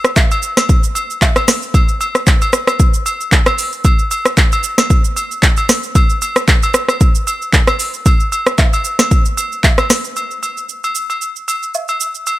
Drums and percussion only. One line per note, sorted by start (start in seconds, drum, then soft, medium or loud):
0.04 cross-stick loud
0.04 shaker medium
0.16 kick loud
0.16 clap loud
0.16 low woodblock medium
0.16 shaker medium
0.31 high agogo medium
0.31 shaker medium
0.43 shaker loud
0.57 cross-stick medium
0.57 snare medium
0.57 high agogo medium
0.57 shaker medium
0.69 kick loud
0.69 shaker medium
0.84 shaker medium
0.95 high agogo medium
0.95 shaker loud
1.10 shaker soft
1.22 kick medium
1.22 clap medium
1.22 low woodblock medium
1.22 shaker medium
1.36 cross-stick loud
1.36 high agogo medium
1.36 shaker soft
1.48 cross-stick loud
1.48 snare medium
1.48 open hi-hat medium
1.48 shaker loud
1.62 shaker soft
1.74 kick loud
1.74 high agogo medium
1.74 shaker medium
1.89 shaker soft
2.01 high agogo medium
2.01 shaker medium
2.15 cross-stick medium
2.15 shaker medium
2.27 kick loud
2.27 clap loud
2.27 shaker medium
2.42 high agogo medium
2.42 shaker medium
2.53 cross-stick loud
2.53 shaker loud
2.67 cross-stick loud
2.67 high agogo medium
2.67 shaker medium
2.80 kick loud
2.80 shaker medium
2.94 shaker medium
3.06 high agogo medium
3.06 shaker loud
3.21 shaker medium
3.32 kick medium
3.32 clap medium
3.32 shaker medium
3.46 cross-stick loud
3.46 high agogo medium
3.46 shaker soft
3.58 open hi-hat medium
3.58 shaker loud
3.73 shaker medium
3.84 kick loud
3.84 high agogo medium
3.84 shaker medium
3.99 shaker soft
4.11 high agogo medium
4.11 shaker medium
4.25 cross-stick loud
4.25 shaker medium
4.37 kick loud
4.37 clap loud
4.37 shaker medium
4.52 high agogo medium
4.52 shaker medium
4.63 shaker loud
4.78 cross-stick medium
4.78 snare medium
4.78 high agogo medium
4.78 shaker medium
4.90 kick loud
4.90 shaker medium
5.05 shaker medium
5.16 high agogo medium
5.16 shaker loud
5.31 shaker medium
5.43 kick medium
5.43 clap medium
5.43 shaker medium
5.57 high agogo medium
5.57 shaker medium
5.69 cross-stick loud
5.69 snare medium
5.69 open hi-hat medium
5.69 shaker loud
5.83 shaker medium
5.95 kick loud
5.95 high agogo medium
5.95 shaker medium
6.10 shaker soft
6.22 high agogo medium
6.22 shaker medium
6.36 cross-stick loud
6.36 shaker medium
6.48 kick loud
6.48 clap loud
6.48 shaker medium
6.63 high agogo medium
6.63 shaker medium
6.74 cross-stick loud
6.74 shaker loud
6.89 cross-stick medium
6.89 high agogo medium
6.89 shaker medium
7.01 kick loud
7.01 shaker medium
7.15 shaker medium
7.27 high agogo medium
7.27 shaker loud
7.42 shaker medium
7.53 kick medium
7.53 clap medium
7.53 shaker medium
7.67 cross-stick loud
7.67 high agogo medium
7.67 shaker soft
7.80 open hi-hat medium
7.80 shaker loud
7.94 shaker soft
8.06 kick loud
8.06 high agogo medium
8.06 shaker medium
8.20 shaker soft
8.32 high agogo medium
8.32 shaker medium
8.47 cross-stick loud
8.47 shaker medium
8.58 kick loud
8.58 clap loud
8.58 low woodblock medium
8.58 shaker medium
8.73 high agogo medium
8.73 shaker medium
8.84 shaker loud
8.99 cross-stick medium
8.99 snare medium
8.99 high agogo medium
8.99 shaker medium
9.11 kick loud
9.11 shaker medium
9.26 shaker medium
9.37 high agogo medium
9.37 shaker loud
9.52 shaker soft
9.64 kick medium
9.64 clap loud
9.64 low woodblock medium
9.64 shaker medium
9.78 cross-stick loud
9.78 high agogo medium
9.78 shaker soft
9.90 cross-stick loud
9.90 snare medium
9.90 open hi-hat medium
9.90 shaker loud
10.04 shaker medium
10.16 high agogo medium
10.16 shaker medium
10.31 shaker soft
10.43 high agogo medium
10.43 shaker medium
10.57 shaker soft
10.69 shaker medium
10.84 high agogo medium
10.84 shaker medium
10.95 shaker medium
11.10 high agogo medium
11.10 shaker medium
11.22 shaker medium
11.36 shaker medium
11.48 high agogo medium
11.48 shaker medium
11.63 shaker soft
11.74 low woodblock medium
11.74 shaker medium
11.88 high agogo medium
11.88 shaker soft
12.00 shaker medium
12.15 shaker soft
12.27 high agogo medium
12.27 shaker medium